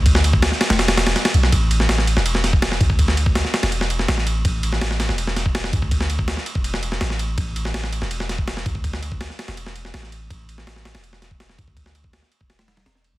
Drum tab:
RD |x-x-x-xxxxxxxxx-|x-x-x-x-x-x-x-x-|x-x-x-xxx-x-x-x-|x-x-x-x-x-x-x-x-|
SD |-o--oooooooooo-o|---ooo-o-oo-oo--|-o--oooo-o-ooo--|---ooooo-oo-oo--|
BD |o--o------------|o----------o--oo|o--o------------|o----------o--oo|

RD |x-x-x-x-x-x-x-x-|x-x-x-x-x-x-x-x-|x-x-x-xxx-x-x-x-|x-x-x-xxx-x-x-x-|
SD |-o--oo---o-ooo--|---ooo-o-oo-oo--|-o--oooo-o-ooo--|---ooooo-oo-oo--|
BD |o--o---o--------|o----------o--oo|o--o------------|o----------o--oo|

RD |x-x-x-x-xxxxx-x-|
SD |-o--oo--oooooo--|
BD |o--o---o--------|